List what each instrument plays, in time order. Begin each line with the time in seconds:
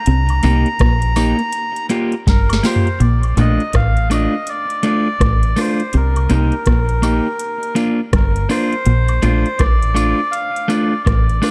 Already playing: melodica A#5
0.06 fingered electric bass C2, clean electric guitar C3, closed hi-hat
0.29 closed hi-hat, high woodblock
0.43 fingered electric bass C2, clean electric guitar C3 A#3 D#4 G4, closed hi-hat, tambourine
0.66 closed hi-hat
0.79 fingered electric bass A#1, clean electric guitar A#2, kick, cross-stick, closed hi-hat
1.02 closed hi-hat
1.16 clean electric guitar A#3 D#4 G4, closed hi-hat, tambourine, high woodblock
1.39 muted clean electric guitar stroke, closed hi-hat
1.52 closed hi-hat
1.76 closed hi-hat
1.89 clean electric guitar A#3 F4 G4, closed hi-hat, tambourine
2.12 closed hi-hat
2.27 fingered electric bass G1, clean electric guitar G2, melodica A#4, kick, snare, closed hi-hat
2.49 snare, closed hi-hat, high woodblock
2.63 clean electric guitar A#3 F4 G4, melodica C5, snare, open hi-hat, tambourine
2.76 floor tom
2.87 closed hi-hat
3.00 fingered electric bass A#1, clean electric guitar A#2, melodica D5, closed hi-hat
3.23 closed hi-hat, high woodblock
3.37 fingered electric bass A#1, clean electric guitar A#2 A3 D4 F4, melodica D#5, closed hi-hat, tambourine
3.60 closed hi-hat
3.73 fingered electric bass A1, clean electric guitar A2, melodica F5, kick, cross-stick, closed hi-hat
3.97 closed hi-hat
4.10 clean electric guitar A3 D4 F4, melodica D#5, closed hi-hat, tambourine, high woodblock
4.47 melodica D5, closed hi-hat
4.70 closed hi-hat
4.83 clean electric guitar A3 D4 F4, melodica D5, closed hi-hat, tambourine
5.20 fingered electric bass A1, clean electric guitar A2, kick, cross-stick, closed hi-hat
5.43 closed hi-hat
5.56 clean electric guitar A3 D4 F4, melodica C5, cross-stick, open hi-hat, tambourine
5.80 closed hi-hat
5.93 fingered electric bass C2, clean electric guitar C3, melodica A#4, closed hi-hat
6.16 closed hi-hat, high woodblock
6.29 fingered electric bass C2, clean electric guitar C3 A#3 D#4 G4, closed hi-hat, tambourine
6.34 melodica A#4
6.52 closed hi-hat
6.66 fingered electric bass A#1, clean electric guitar A#2, kick, cross-stick, closed hi-hat
6.89 closed hi-hat
7.02 clean electric guitar A#3 D#4 G4, closed hi-hat, tambourine, high woodblock
7.39 closed hi-hat
7.63 closed hi-hat
7.75 clean electric guitar A#3 D4 F4, closed hi-hat, tambourine
8.13 fingered electric bass G1, clean electric guitar G2, melodica A#4, kick, cross-stick, closed hi-hat
8.36 closed hi-hat
8.49 clean electric guitar A#3 D4 F4, melodica C5, cross-stick, open hi-hat, tambourine
8.73 closed hi-hat
8.86 fingered electric bass A#1, clean electric guitar A#2, closed hi-hat
9.08 closed hi-hat, high woodblock
9.22 fingered electric bass A#1, clean electric guitar A#2 A3 D4 F4, closed hi-hat, tambourine
9.46 closed hi-hat
9.59 fingered electric bass A1, clean electric guitar A2, melodica D5, kick, cross-stick, closed hi-hat
9.82 closed hi-hat
9.95 clean electric guitar A3 D4 F4, closed hi-hat, tambourine, high woodblock
10.31 melodica F5, closed hi-hat
10.56 closed hi-hat
10.68 clean electric guitar A3 D4 F4, melodica D5, closed hi-hat, tambourine
11.04 fingered electric bass A1, clean electric guitar A2, melodica D5, kick, cross-stick, closed hi-hat
11.29 closed hi-hat
11.42 clean electric guitar A3 D4 F4, cross-stick, open hi-hat, tambourine